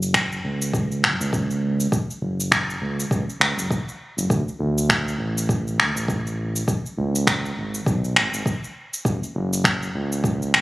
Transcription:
Already playing: F#1
0.02 shaker
0.14 finger snap, kick, shaker
0.32 shaker
0.44 C#2
0.62 shaker
0.74 kick, shaker
0.92 shaker
1.03 F#1, finger snap
1.20 C#2, shaker
1.33 kick, shaker
1.51 shaker
1.80 shaker
1.92 kick, shaker
2.10 shaker
2.22 F#1
2.40 shaker
2.52 finger snap, kick, shaker
2.70 shaker
2.81 C#2
3.00 shaker
3.11 C#2, kick, shaker
3.30 shaker
3.40 C#2, finger snap
3.57 F#1, shaker
3.71 kick, shaker
3.89 shaker
4.17 F#1, shaker
4.30 D2, kick, shaker
4.48 shaker
4.59 D2
4.78 shaker
4.90 finger snap, kick, shaker
5.08 shaker
5.18 A1
5.38 shaker
5.49 kick, shaker
5.67 shaker
5.78 D2, finger snap
5.95 A1, shaker
6.08 kick, shaker
6.27 shaker
6.56 shaker
6.68 kick, shaker
6.86 shaker
6.97 C#2
7.16 shaker
7.27 finger snap, kick, shaker
7.45 shaker
7.57 G#1
7.74 shaker
7.86 B1, kick, shaker
8.04 shaker
8.16 G#1, finger snap
8.33 G#1, shaker
8.46 kick, shaker
8.64 shaker
8.94 shaker
9.05 F#1, kick, shaker
9.23 shaker
9.35 F#1
9.53 shaker
9.64 finger snap, kick, shaker
9.83 shaker
9.94 C#2
10.12 shaker
10.24 kick, shaker
10.42 shaker
10.53 F#1, finger snap

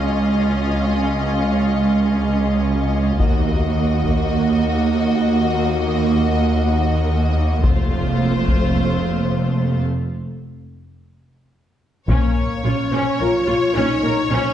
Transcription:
Already playing: C#2 C#4 F4 D#5
3.19 D#2 A#3 F#4 D#5, taiko
4.04 taiko
7.63 F1 F2 A3 F4 C5, taiko
8.48 taiko
12.08 A#1 A#2 A#3 C#4 C#5, taiko
12.64 A#1 A#2 C#4 F4
12.91 A#1 A#2 C#4
13.20 A#1 A#2 F4 A#4
13.46 A#1 A#2 F4
13.74 A#1 A#2 C#4 D#4
14.03 A#1 A#2 A#4
14.31 A#1 A#2 C#4

